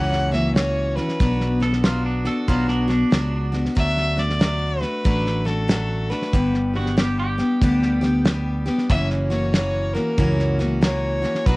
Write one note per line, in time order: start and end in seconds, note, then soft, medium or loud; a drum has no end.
0.00 0.98 C#2 medium
0.00 0.32 F#2 medium
0.00 0.33 C#3 medium
0.00 0.33 E3 medium
0.00 0.32 A#3 medium
0.00 0.32 C#4 medium
0.00 0.31 F#4 medium
0.00 0.33 F#5 loud
0.13 snare soft
0.32 0.54 E3 soft
0.32 0.55 A#3 soft
0.32 0.56 C#4 medium
0.32 0.55 F#4 medium
0.32 0.55 E5 medium
0.32 snare soft
0.55 0.96 E3 medium
0.55 0.97 A#3 medium
0.55 0.96 C#4 medium
0.55 0.95 F#4 medium
0.55 0.97 C#5 medium
0.55 snare loud
0.55 hi-hat pedal medium
0.96 1.20 E3 soft
0.96 1.20 C#4 soft
0.96 1.20 F#4 soft
0.96 1.60 B4 medium
0.96 snare soft
1.09 snare soft
1.20 2.27 B1 medium
1.20 1.61 B2 medium
1.20 1.61 F#3 medium
1.20 1.61 B3 medium
1.20 1.60 D4 medium
1.20 1.59 F#4 medium
1.20 kick loud
1.20 snare soft
1.40 snare soft
1.60 1.83 B3 soft
1.60 1.84 D4 soft
1.60 1.84 F#4 medium
1.60 1.83 A4 medium
1.60 snare soft
1.73 snare soft
1.83 2.25 F#3 medium
1.83 2.25 B3 medium
1.83 2.25 D4 medium
1.83 2.05 F4 medium
1.83 2.24 F#4 medium
1.83 snare loud
1.83 hi-hat pedal medium
2.06 2.26 D4 medium
2.25 2.48 B3 soft
2.25 2.48 D4 medium
2.25 2.48 F#4 medium
2.25 2.47 A4 medium
2.25 snare soft
2.48 3.03 B1 medium
2.48 2.89 B2 medium
2.48 2.89 F#3 medium
2.48 2.89 B3 medium
2.48 2.88 D4 medium
2.48 2.69 F4 medium
2.48 2.86 F#4 medium
2.48 kick loud
2.48 snare soft
2.68 2.88 D4 medium
2.68 snare soft
2.88 3.10 B3 soft
2.88 3.12 D4 medium
2.88 3.62 D4 medium
2.88 3.12 F#4 medium
2.88 snare soft
3.11 3.67 C#2 medium
3.11 3.52 F#3 medium
3.11 3.53 B3 medium
3.11 3.52 D4 medium
3.11 3.51 F#4 medium
3.11 snare loud
3.11 hi-hat pedal medium
3.52 3.76 B3 soft
3.52 3.76 D4 soft
3.52 3.76 F#4 medium
3.52 snare soft
3.65 snare soft
3.75 4.83 D2 medium
3.75 4.17 D3 medium
3.75 4.17 F#3 medium
3.75 4.17 A3 medium
3.75 4.16 D4 medium
3.75 4.15 F#4 medium
3.75 4.20 E5 loud
3.75 kick medium
3.75 snare soft
3.97 snare soft
4.16 4.39 A3 soft
4.16 4.40 D4 soft
4.16 4.40 F#4 soft
4.16 4.83 D5 loud
4.16 snare soft
4.30 snare soft
4.39 4.81 F#3 medium
4.39 4.81 A3 medium
4.39 4.81 D4 medium
4.39 4.80 F#4 medium
4.39 snare loud
4.39 hi-hat pedal medium
4.81 5.04 A3 soft
4.81 5.05 D4 soft
4.81 5.04 F#4 soft
4.81 5.47 B4 medium
4.81 snare soft
5.04 6.12 A1 medium
5.04 5.45 D3 medium
5.04 5.46 F#3 medium
5.04 5.46 A3 medium
5.04 5.45 D4 medium
5.04 5.44 F#4 medium
5.04 kick loud
5.04 snare soft
5.26 snare soft
5.45 5.68 A3 soft
5.45 5.68 D4 soft
5.45 5.69 F#4 medium
5.45 6.12 A4 medium
5.45 snare soft
5.68 6.09 F#3 medium
5.68 6.10 A3 medium
5.68 6.10 D4 medium
5.68 6.09 F#4 medium
5.68 snare loud
5.68 hi-hat pedal medium
6.10 6.34 A3 soft
6.10 6.34 D4 soft
6.10 6.33 F#4 soft
6.10 6.74 B4 medium
6.10 snare soft
6.22 snare soft
6.33 7.40 G1 medium
6.33 6.74 G2 medium
6.33 6.74 D3 medium
6.33 6.74 G3 medium
6.33 6.75 B3 medium
6.33 6.74 D4 medium
6.33 6.72 G4 medium
6.33 kick medium
6.33 snare soft
6.54 snare soft
6.74 6.96 G3 soft
6.74 6.97 B3 soft
6.74 6.97 D4 soft
6.74 6.97 F#4 medium
6.74 6.97 G4 medium
6.74 snare soft
6.86 snare soft
6.97 7.38 G3 medium
6.97 7.38 B3 medium
6.97 7.38 D4 medium
6.97 7.18 G4 medium
6.97 7.37 G4 medium
6.97 snare loud
6.97 hi-hat pedal medium
7.19 8.74 G4 medium
7.38 7.61 G3 soft
7.38 7.62 B3 soft
7.38 7.62 D4 medium
7.38 7.61 G4 medium
7.38 snare soft
7.61 8.68 D2 medium
7.61 8.02 G2 medium
7.61 8.03 D3 medium
7.61 8.02 G3 medium
7.61 8.02 B3 medium
7.61 8.01 D4 loud
7.61 8.00 G4 loud
7.61 kick loud
7.61 snare soft
7.82 snare soft
8.01 8.24 G3 soft
8.01 8.24 B3 medium
8.01 8.25 D4 medium
8.01 8.25 G4 medium
8.01 snare soft
8.25 8.66 G3 medium
8.25 8.66 B3 medium
8.25 8.65 D4 medium
8.25 8.64 G4 medium
8.25 snare loud
8.25 hi-hat pedal medium
8.66 8.90 G3 soft
8.66 8.90 B3 medium
8.66 8.90 D4 medium
8.66 8.89 G4 medium
8.66 snare soft
8.78 snare soft
8.89 9.96 F#1 medium
8.89 9.30 F#2 medium
8.89 9.31 C#3 medium
8.89 9.31 E3 medium
8.89 9.31 A#3 medium
8.89 9.30 C#4 medium
8.89 9.29 F#4 medium
8.89 9.08 E5 loud
8.89 kick loud
8.89 snare soft
9.10 snare soft
9.30 9.53 E3 soft
9.30 9.54 A#3 soft
9.30 9.54 C#4 soft
9.30 9.54 F#4 medium
9.30 9.52 C#5 medium
9.30 snare soft
9.54 9.95 E3 medium
9.54 9.95 A#3 medium
9.54 9.94 C#4 medium
9.54 9.93 F#4 medium
9.54 9.96 C#5 medium
9.54 snare loud
9.54 hi-hat pedal medium
9.94 10.17 E3 soft
9.94 10.18 A#3 soft
9.94 10.18 C#4 soft
9.94 10.18 F#4 soft
9.94 10.59 A#4 medium
9.94 snare soft
10.18 11.24 C#2 medium
10.18 10.59 F#2 medium
10.18 10.59 C#3 medium
10.18 10.59 E3 medium
10.18 10.59 A#3 medium
10.18 10.59 C#4 medium
10.18 10.58 F#4 medium
10.18 kick loud
10.18 snare soft
10.39 snare soft
10.59 10.80 E3 soft
10.59 10.81 A#3 soft
10.59 10.82 C#4 soft
10.59 10.82 F#4 medium
10.59 snare soft
10.81 11.23 E3 medium
10.81 11.23 A#3 medium
10.81 11.22 C#4 medium
10.81 11.21 F#4 medium
10.81 11.47 C#5 medium
10.81 snare loud
10.81 hi-hat pedal medium
11.22 11.46 E3 soft
11.22 11.47 A#3 soft
11.22 11.46 C#4 medium
11.22 11.46 F#4 medium
11.22 snare soft
11.35 snare soft
11.46 11.57 B1 medium
11.46 11.57 B2 medium
11.46 11.57 F#3 medium
11.46 11.57 B3 medium
11.46 11.57 D4 medium
11.46 11.57 F#4 medium
11.46 11.57 B4 loud
11.46 kick loud
11.46 snare soft